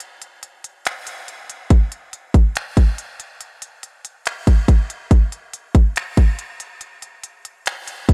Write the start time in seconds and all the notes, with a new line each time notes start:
0.00 closed hi-hat
0.22 closed hi-hat
0.43 closed hi-hat
0.64 closed hi-hat
0.85 finger snap, closed hi-hat
1.07 closed hi-hat
1.28 closed hi-hat
1.50 closed hi-hat
1.70 kick, closed hi-hat
1.92 closed hi-hat
2.13 closed hi-hat
2.34 kick, closed hi-hat
2.56 finger snap, closed hi-hat
2.77 kick, closed hi-hat
2.98 closed hi-hat
3.20 closed hi-hat
3.41 closed hi-hat
3.62 closed hi-hat
3.83 closed hi-hat
4.05 closed hi-hat
4.26 finger snap, closed hi-hat
4.47 kick, closed hi-hat
4.68 kick, closed hi-hat
4.90 closed hi-hat
5.11 kick, closed hi-hat
5.32 closed hi-hat
5.53 closed hi-hat
5.75 kick, closed hi-hat
5.96 finger snap, closed hi-hat
6.17 kick, closed hi-hat
6.39 closed hi-hat
6.60 closed hi-hat
6.81 closed hi-hat
7.02 closed hi-hat
7.24 closed hi-hat
7.45 closed hi-hat
7.66 finger snap, closed hi-hat
7.88 closed hi-hat
8.09 kick, closed hi-hat